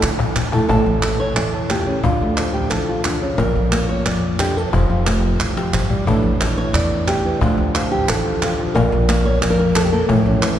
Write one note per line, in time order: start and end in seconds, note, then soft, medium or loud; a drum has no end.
0.03 0.32 D3 loud
0.03 muted nylon-string guitar stroke medium
0.03 cajon slap medium
0.03 clap medium
0.19 cajon bass medium
0.19 clap soft
0.36 0.66 D2 medium
0.36 cajon bass medium
0.36 clap medium
0.52 0.70 A3 soft
0.52 0.70 E4 medium
0.52 0.67 A4 medium
0.52 cajon bass loud
0.52 clap soft
0.69 0.84 A1 medium
0.69 1.69 A2 medium
0.69 1.19 A4 medium
0.69 cajon bass medium
0.69 clap soft
0.86 1.30 A1 medium
1.03 2.04 E3 medium
1.03 cajon slap medium
1.03 clap medium
1.20 1.36 C#5 medium
1.36 1.95 E2 medium
1.36 1.53 D5 medium
1.36 clap medium
1.54 2.02 A4 soft
1.54 cajon slap soft
1.69 1.87 A#2 medium
1.69 2.04 G4 medium
1.69 cajon bass medium
1.69 cajon slap medium
1.69 clap medium
1.87 2.03 C#3 medium
2.04 2.19 D2 medium
2.04 3.03 D3 medium
2.04 2.88 F4 medium
2.04 cajon bass medium
2.04 clap soft
2.21 2.65 D2 medium
2.21 3.39 A3 soft
2.37 3.71 F3 medium
2.37 cajon slap medium
2.37 clap medium
2.54 2.70 G4 medium
2.54 cajon slap soft
2.70 3.30 A1 medium
2.70 3.37 A4 medium
2.70 cajon slap soft
2.70 clap medium
2.88 4.39 F4 soft
2.88 cajon slap soft
3.04 3.21 D3 medium
3.04 cajon bass medium
3.04 cajon slap medium
3.04 clap medium
3.22 3.39 C#3 medium
3.38 3.53 A#1 medium
3.38 4.71 A#2 medium
3.38 3.89 A#4 medium
3.38 cajon bass medium
3.38 clap soft
3.55 4.00 A#1 medium
3.72 4.56 A#3 medium
3.72 cajon slap medium
3.72 clap medium
3.89 4.05 C#5 medium
3.89 cajon slap soft
4.06 4.65 F2 medium
4.06 4.74 D5 medium
4.06 cajon slap soft
4.06 clap medium
4.23 cajon slap soft
4.39 4.56 D3 medium
4.39 4.57 G4 medium
4.39 cajon bass medium
4.39 cajon slap medium
4.39 clap medium
4.56 4.73 E3 medium
4.56 4.73 A4 medium
4.73 4.88 F1 loud
4.73 5.72 F3 medium
4.73 5.41 G4 medium
4.73 cajon bass medium
4.73 clap soft
4.90 5.34 F1 medium
4.90 6.05 F4 soft
5.06 6.07 A3 medium
5.06 cajon slap loud
5.06 clap medium
5.24 cajon slap soft
5.40 5.54 C2 medium
5.40 clap medium
5.57 5.72 F1 medium
5.57 6.05 G4 soft
5.57 cajon slap loud
5.73 5.89 G1 medium
5.73 5.89 F3 medium
5.73 cajon bass medium
5.73 clap medium
5.90 6.05 A1 medium
5.90 6.07 G3 medium
5.90 cajon bass medium
6.06 6.21 A1 medium
6.06 7.39 A2 medium
6.06 6.40 E3 medium
6.06 7.43 D4 soft
6.06 7.08 E4 soft
6.06 6.57 A4 medium
6.06 cajon bass loud
6.06 clap soft
6.23 6.67 A1 medium
6.41 7.24 E3 medium
6.41 cajon slap loud
6.41 clap medium
6.58 6.75 C#5 loud
6.73 7.32 E2 medium
6.73 7.08 D5 loud
6.73 cajon slap soft
6.73 clap medium
7.07 7.41 G4 loud
7.07 cajon bass medium
7.07 cajon slap medium
7.07 clap medium
7.25 7.42 E3 medium
7.41 7.56 D2 loud
7.41 8.74 D3 medium
7.41 7.75 F3 soft
7.41 8.76 A3 medium
7.41 8.25 F4 medium
7.41 cajon bass medium
7.41 clap soft
7.58 8.02 D2 medium
7.75 8.57 F3 medium
7.75 cajon slap loud
7.75 clap medium
7.91 8.09 G4 medium
8.08 8.67 A1 loud
8.08 8.74 A4 medium
8.08 clap medium
8.26 8.42 F4 soft
8.42 8.74 F4 soft
8.42 cajon bass medium
8.42 cajon slap medium
8.42 clap medium
8.59 8.73 F3 medium
8.75 8.90 A#1 loud
8.75 10.07 A#2 medium
8.75 9.25 A#4 loud
8.75 cajon bass loud
8.75 clap soft
8.92 9.36 A#1 loud
9.08 9.92 A#3 medium
9.08 cajon slap loud
9.08 clap medium
9.25 9.41 C#5 medium
9.42 10.01 F2 loud
9.42 9.50 D5 medium
9.42 cajon slap soft
9.42 clap medium
9.50 9.58 A#4 loud
9.59 10.10 A#4 medium
9.76 9.84 A4 medium
9.76 cajon slap loud
9.76 clap medium
9.84 9.92 G4 medium
9.92 10.08 A#3 medium
9.92 10.59 A4 medium
10.09 10.24 A1 loud
10.09 10.59 A2 medium
10.09 cajon bass loud
10.09 clap soft
10.26 10.59 A1 medium
10.26 10.59 C#4 medium
10.43 10.59 E3 medium
10.43 cajon slap loud
10.43 clap medium